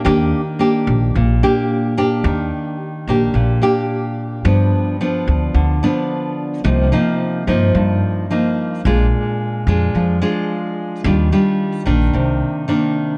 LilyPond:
<<
  \new Staff \with { instrumentName = "Nylon-string guitar" } { \time 4/4 \key ees \major \tempo 4 = 109 << { <bes d' g'>8 r8 <bes d' g'>4 r8 <bes d' g'>4 <bes d' g'>8~ | <bes d' g'>4 r8 <bes d' g'>4 <bes d' g'>4. | <f b d'>4 <f b d'>4. <f b d'>4. | <f bes ees'>8 <f bes ees'>4 <f bes ees'>4. <f bes ees'>4 |
<aes d' f'>4. <aes d' f'>4 <aes d' f'>4. | <g d' f'>8 <g d' f'>4 <ees bes d'>4. <ees bes d'>4 | } \\ { ees2 bes,2 | ees2 bes,2 | g,2 d2 | c2 g,2 |
bes,2 f2 | ees2 c2 | } >> }
  \new Staff \with { instrumentName = "Upright bass" } { \clef bass \time 4/4 \key ees \major ees,8 r4 bes,,8 bes,,8 r4. | ees,8 r4 bes,,8 bes,,8 r4. | g,8 r4 d,8 d,8 r4. | c,8 r4 g,8 g,8 r4. |
bes,,8 r4 f,8 f,8 r4. | ees,8 r4 bes,,8 c,8 r4. | }
>>